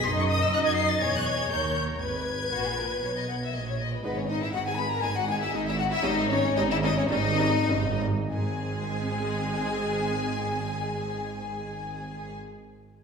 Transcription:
<<
  \new Staff \with { instrumentName = "Violin section" } { \time 4/4 \key dis \phrygian \tempo 4 = 117 bis''16 cis'''16 dis'''16 e'''16 fis'''16 gis'''16 bis'''16 a'''16 gis'''16 fis'''16 gis'''8 g'''8 g'''8 | gis'''2.~ gis'''8 r8 | b'16 cis''16 dis''16 e''16 fis''16 gis''16 b''16 ais''16 gis''16 fis''16 gis''16 e''16 dis''16 e''16 fis''16 e''16 | dis''8 cis''8 dis''16 e''16 dis''16 cis''16 dis''4. r8 |
gis''1~ | gis''1 | }
  \new Staff \with { instrumentName = "Violin section" } { \time 4/4 \key dis \phrygian << { dis''2. cis''4 | b'4 fis'16 gis'16 ais'16 b'16 cis''16 dis''16 fis''16 e''16 dis''16 cis''16 dis''16 b'16 | b16 cis'16 dis'16 e'16 fis'16 gis'16 b'16 ais'16 gis'16 fis'16 gis'16 e'16 dis'16 e'16 fis'16 e'16 | dis'8 cis'8 dis'16 e'16 dis'16 cis'16 dis'4. r8 |
gis'1~ | gis'1 | } \\ { dis'4 dis'4 gis'4 ais'4 | b'4 r2. | r1 | r1 |
r1 | r1 | } >> }
  \new Staff \with { instrumentName = "Viola section" } { \time 4/4 \key dis \phrygian dis''2 cis''2 | b'2.~ b'8 r8 | <gis dis'>8 <gis dis'>8 <gis dis'>8 <gis dis'>8 <gis dis'>8 <gis dis'>8 <gis dis'>8 <gis dis'>8 | <g cis'>8 <g cis'>8 <g cis'>8 <g cis'>8 <g cis'>8 <g cis'>8 <g cis'>8 <g cis'>8 |
<gis bis>1~ | <gis bis>1 | }
  \new Staff \with { instrumentName = "Cello section" } { \clef bass \time 4/4 \key dis \phrygian fis,4 fis4 e,4 dis,4 | gis,4 ais,4 b,4 ais,4 | gis,4 gis,4 gis,4 gis,4 | gis,4 gis,4 gis,4 gis,4 |
gis,1~ | gis,1 | }
  \new Staff \with { instrumentName = "Double bass section" } { \clef bass \time 4/4 \key dis \phrygian fis,,4 fis,4 e,,4 dis,4 | gis,,4 ais,,4 b,,4 ais,,4 | gis,,4 gis,,4 gis,,4 gis,,4 | gis,,4 gis,,4 gis,,4 gis,,4 |
gis,,1~ | gis,,1 | }
>>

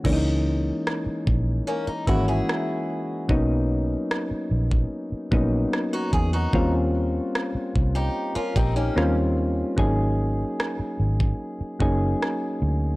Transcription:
<<
  \new Staff \with { instrumentName = "Steel-string acoustic guitar" } { \time 4/4 \key cis \dorian \tempo 4 = 74 r2 <ais cis'>16 dis'16 <cis' e'>16 <e' gis'>4~ <e' gis'>16 | r2. r16 <dis' fis'>16 gis'16 <dis' fis'>16~ | <dis' fis'>16 r4. <dis' g'>8 <cis' eis'>16 <bis dis'>16 <ais cis'>8 r8. | r1 | }
  \new Staff \with { instrumentName = "Synth keys" } { \time 4/4 \key cis \dorian << { r1 | r1 | r2 r16 ais'16 g'16 dis'8 r8. | r1 | } \\ { <e gis ais cis' d' dis'>2 r8 <e gis ais cis' fis'>4. | <fis ais b cis' dis'>2 r8 <fis ais b cis' dis'>4. | <g ais bis cis' eis'>2 r4 <fis g ais bis cis' eis'>4 | <fis ais cis' dis' gis'>2 r8 <fis ais cis' dis' gis'>4. | } >> }
  \new Staff \with { instrumentName = "Fingered electric bass" } { \clef bass \time 4/4 \key cis \dorian cis,4 r8 ais,,8 r8 gis,,8 r4 | b,,4 r8 ais,,8 r8 ais,,8 r8 e,8 | dis,4 r8 bis,,8 r8 ais,,8 dis,4 | gis,,4 r8 gis,,8 r8 fis,,8 r8 d,8 | }
  \new DrumStaff \with { instrumentName = "Drums" } \drummode { \time 4/4 <cymc bd>4 ss8 bd8 r8 bd8 ss4 | bd4 ss8. bd16 r8 bd8 ss8 bd8 | bd4 ss8 bd8 r8 bd8 ss4 | bd4 ss8. bd16 r8 bd8 ss4 | }
>>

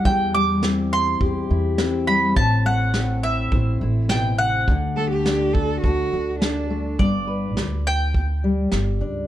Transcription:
<<
  \new Staff \with { instrumentName = "Mandolin" } { \time 4/4 \key g \major \tempo 4 = 104 g''8 d'''4 c'''4. r8 b''8 | a''8 fis''4 e''4 r8 g''8 fis''8~ | fis''2. r4 | d''4. g''2~ g''8 | }
  \new Staff \with { instrumentName = "Cello" } { \time 4/4 \key g \major r1 | r1 | r8 a'16 g'8. a'8 fis'4 d'4 | r1 | }
  \new Staff \with { instrumentName = "Steel-string acoustic guitar" } { \time 4/4 \key g \major << { r4 c'8 e'8 g'8 e'8 c'4~ | c'4 c'8 e'8 c''8 e'4. | r4 d'8 fis'8 a'8 fis'8 d'4 | r8 b'2. d'8 | } \\ { <e g>8 g2. g8 | a,8 a2~ a8 b,8 c8 | d8 a2. a8 | g,4 r4. g4. | } >> }
  \new Staff \with { instrumentName = "Upright bass" } { \clef bass \time 4/4 \key g \major e,2 e,8 e,4. | a,,2 a,,8 a,,4. | d,2 d,8 d,4. | g,,4 d,2 g,,8 cis,8 | }
  \new DrumStaff \with { instrumentName = "Drums" } \drummode { \time 4/4 bd4 sn4 bd4 sn4 | bd4 sn4 bd4 sn4 | bd4 sn8 bd8 bd4 sn4 | bd4 sn4 bd4 sn4 | }
>>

